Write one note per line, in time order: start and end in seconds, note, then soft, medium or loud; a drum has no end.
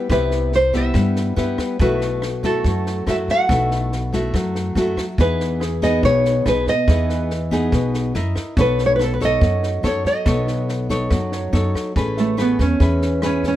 0.00 1.36 B4 soft
0.00 1.81 D5 soft
0.00 1.82 E5 soft
0.10 0.91 C2 loud
0.10 0.93 C3 medium
0.10 0.52 B3 medium
0.10 0.53 E4 medium
0.10 0.53 G4 medium
0.10 0.54 B4 medium
0.10 kick medium
0.10 cross-stick medium
0.10 snare soft
0.31 snare soft
0.52 0.76 C5 medium
0.52 snare soft
0.73 1.34 B3 soft
0.73 1.34 E4 medium
0.73 1.34 G4 medium
0.73 1.35 E5 medium
0.73 kick soft
0.73 snare soft
0.94 1.34 G2 medium
0.94 1.77 G3 medium
0.94 kick medium
0.94 cross-stick medium
0.94 snare soft
1.16 snare soft
1.36 1.57 G2 medium
1.36 1.76 B3 medium
1.36 1.76 E4 medium
1.36 1.76 G4 medium
1.36 1.96 B4 soft
1.36 snare soft
1.58 kick soft
1.58 cross-stick medium
1.58 snare soft
1.79 2.60 B1 loud
1.79 2.63 B2 medium
1.79 2.22 A3 medium
1.79 2.22 E4 medium
1.79 2.23 F#4 medium
1.79 2.45 B4 medium
1.79 kick medium
1.79 snare soft
2.01 snare soft
2.22 cross-stick medium
2.22 snare soft
2.43 3.03 A3 medium
2.43 3.04 E4 medium
2.43 3.04 F#4 medium
2.43 3.04 A4 medium
2.43 kick soft
2.43 snare soft
2.64 3.04 F#2 medium
2.64 3.47 F#3 soft
2.64 kick medium
2.64 snare soft
2.86 snare soft
3.07 3.26 F#2 medium
3.07 3.46 A3 medium
3.07 3.46 E4 medium
3.07 3.46 F#4 medium
3.07 3.16 E5 medium
3.07 cross-stick medium
3.07 snare soft
3.28 4.52 F#5 medium
3.28 kick soft
3.28 snare soft
3.49 4.30 B1 loud
3.49 4.32 B2 medium
3.49 3.92 A3 soft
3.49 3.92 E4 soft
3.49 3.92 F#4 medium
3.49 4.31 A4 soft
3.49 kick medium
3.49 cross-stick medium
3.49 snare soft
3.71 snare soft
3.92 snare soft
4.13 4.73 A3 medium
4.13 4.73 E4 soft
4.13 4.73 F#4 medium
4.13 kick soft
4.13 snare soft
4.34 4.73 F#2 medium
4.34 5.16 F#3 soft
4.34 kick medium
4.34 cross-stick medium
4.34 snare soft
4.55 snare soft
4.75 4.95 F#2 medium
4.75 5.03 A3 soft
4.75 5.04 E4 soft
4.75 5.04 F#4 medium
4.75 snare soft
4.97 kick soft
4.97 cross-stick soft
4.97 snare soft
5.18 5.99 E2 loud
5.18 6.01 E3 medium
5.18 5.61 B3 soft
5.18 5.61 D#4 soft
5.18 5.61 G#4 medium
5.18 5.83 B4 medium
5.18 kick medium
5.18 snare soft
5.40 snare soft
5.60 6.43 G#4 medium
5.60 cross-stick medium
5.60 snare soft
5.82 6.42 B3 medium
5.82 6.42 D#4 medium
5.82 6.43 G#4 medium
5.82 6.04 D#5 medium
5.82 kick soft
5.82 snare soft
6.03 6.42 B1 medium
6.03 6.86 B2 soft
6.03 6.48 C#5 medium
6.03 kick medium
6.03 snare soft
6.25 snare soft
6.46 6.65 B1 medium
6.46 6.73 B3 soft
6.46 6.73 D#4 medium
6.46 6.73 G#4 medium
6.46 6.69 B4 medium
6.46 cross-stick medium
6.46 snare soft
6.67 8.33 D#5 medium
6.67 kick soft
6.67 snare soft
6.88 7.68 E2 loud
6.88 7.70 E3 medium
6.88 7.30 B3 soft
6.88 7.30 D#4 soft
6.88 7.30 G#4 medium
6.88 kick medium
6.88 cross-stick medium
6.88 snare soft
7.09 7.92 B4 soft
7.09 snare soft
7.30 snare soft
7.51 8.11 B3 medium
7.51 8.12 D#4 medium
7.51 8.12 G#4 medium
7.51 kick soft
7.51 snare soft
7.72 8.12 B1 medium
7.72 8.13 B2 soft
7.72 kick medium
7.72 cross-stick medium
7.72 snare soft
7.94 snare soft
8.14 8.34 F#2 medium
8.14 8.54 E4 medium
8.14 8.54 A#4 medium
8.14 8.54 D#5 medium
8.14 snare soft
8.36 kick soft
8.36 cross-stick medium
8.36 snare soft
8.57 9.38 B1 loud
8.57 9.40 B3 soft
8.57 9.18 D#4 medium
8.57 9.18 A4 medium
8.57 9.18 C#5 medium
8.57 kick medium
8.57 snare soft
8.61 8.86 B4 medium
8.78 snare soft
8.86 8.94 C#5 medium
8.96 9.04 B4 medium
8.96 cross-stick medium
8.96 snare soft
9.04 9.12 A4 medium
9.14 9.22 B4 medium
9.20 9.81 D#4 medium
9.20 9.81 A4 medium
9.20 9.81 C#5 medium
9.20 kick soft
9.20 snare soft
9.25 9.86 D#5 medium
9.41 9.81 F#2 medium
9.41 10.24 F#3 soft
9.41 kick medium
9.41 snare soft
9.63 snare soft
9.83 10.04 F#2 medium
9.83 10.11 D#4 soft
9.83 10.11 A4 medium
9.83 10.11 C#5 medium
9.83 10.06 C#5 medium
9.83 cross-stick medium
9.83 snare soft
10.05 11.50 D#5 medium
10.05 kick soft
10.05 snare soft
10.26 11.07 B1 loud
10.26 11.09 B3 medium
10.26 10.87 D#4 medium
10.26 10.87 A4 soft
10.26 10.87 C#5 medium
10.26 kick medium
10.26 cross-stick medium
10.26 snare soft
10.47 snare soft
10.68 snare soft
10.90 11.50 D#4 medium
10.90 11.50 A4 medium
10.90 11.50 C#5 medium
10.90 kick soft
10.90 snare soft
11.10 11.50 F#2 medium
11.10 11.93 F#3 soft
11.10 kick medium
11.10 cross-stick medium
11.10 snare soft
11.32 12.13 C#5 medium
11.32 snare soft
11.53 11.73 F#2 medium
11.53 11.92 D#4 medium
11.53 11.92 A4 medium
11.53 11.92 C#5 medium
11.53 snare soft
11.75 kick soft
11.75 cross-stick medium
11.75 snare soft
11.96 12.55 A1 medium
11.96 12.78 A3 medium
11.96 12.35 C#4 soft
11.96 12.35 G#4 soft
11.96 12.35 B4 medium
11.96 kick medium
11.96 snare soft
12.17 12.38 A3 medium
12.17 13.00 E5 soft
12.17 snare soft
12.37 12.65 C#4 soft
12.37 12.65 G#4 medium
12.37 12.65 B4 medium
12.37 cross-stick medium
12.37 snare soft
12.41 12.61 B3 medium
12.59 12.79 E2 medium
12.59 13.20 C#4 medium
12.59 kick soft
12.59 snare soft
12.80 13.56 E2 medium
12.80 13.56 E3 soft
12.80 13.19 C#4 soft
12.80 13.19 G#4 soft
12.80 13.20 B4 medium
12.80 kick medium
12.80 snare soft
13.01 snare soft
13.22 13.50 C#4 medium
13.22 13.44 C#4 medium
13.22 13.50 G#4 soft
13.22 13.50 B4 medium
13.22 cross-stick medium
13.22 snare soft
13.43 kick soft
13.43 snare soft
13.48 13.56 C#4 medium